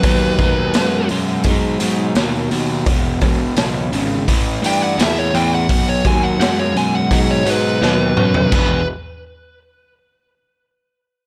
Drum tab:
CC |----------------|----------------|----------------|x---------------|
HH |o-o-o-o-o-o-o-o-|o-o-o-o-o-o-o-o-|o-o-o-o-o-o-----|----------------|
SD |----o-------o---|----o-------o---|----o-------o---|----------------|
T2 |----------------|----------------|--------------o-|----------------|
FT |----------------|----------------|---------------o|----------------|
BD |o-o-----o-------|o-o-----o-------|o-o-----o-------|o---------------|